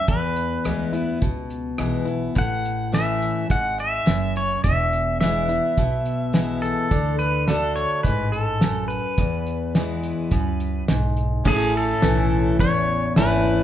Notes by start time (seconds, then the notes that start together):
0.08 E2 B4, kick, closed hi-hat
0.36 closed hi-hat
0.64 D2 E3 G#3 B3 E4, cross-stick, closed hi-hat
0.93 B3 E4, closed hi-hat
1.22 C#2 B2, kick, closed hi-hat
1.50 closed hi-hat
1.78 B1 E3 G#3 B3 E4, cross-stick, closed hi-hat
2.05 B3 E4, closed hi-hat
2.35 A1 A2 F#5, kick, closed hi-hat
2.65 closed hi-hat
2.92 E3 A3 C#4 E4 E5, snare, closed hi-hat
3.22 closed hi-hat
3.50 G#1 G#2 F#5, kick, closed hi-hat
3.79 E5, closed hi-hat
4.06 F#1 F#2, snare, closed hi-hat
4.36 C#5, closed hi-hat
4.64 E1 E2 E5, kick, closed hi-hat
4.93 closed hi-hat
5.21 E3 G#3 B3 E4 E5, snare, closed hi-hat
5.49 B3 E4, closed hi-hat
5.77 B1 B2, kick, closed hi-hat
6.06 closed hi-hat
6.33 E3 G#3 B3 E4, snare, closed hi-hat
6.62 A4, closed hi-hat
6.91 D2 D3, kick, closed hi-hat
7.19 B4, closed hi-hat
7.48 D3 A3 D4 F#4 A4, snare, closed hi-hat
7.76 C#5, closed hi-hat
8.03 A1 G#2 B4, kick, closed hi-hat
8.32 A4, closed hi-hat
8.61 F#2, snare, closed hi-hat
8.88 B4, closed hi-hat
9.18 E2, kick, closed hi-hat
9.47 closed hi-hat
9.75 E3 G#3 B3 E4, snare, closed hi-hat
10.03 closed hi-hat
10.31 C#2 F#2, kick, closed hi-hat
10.60 closed hi-hat
10.88 B1 G#2, snare, closed hi-hat
11.17 closed hi-hat
11.44 A1 A2 C#4 E4 G#4 A4, kick, crash
11.49 A4
11.77 A4
12.02 B1 E3 A3 C#4 E4, snare, open hi-hat
12.59 A1 E2 C#5, kick, open hi-hat
13.16 G#1 E3 A3 C#4 E4 B4, snare, open hi-hat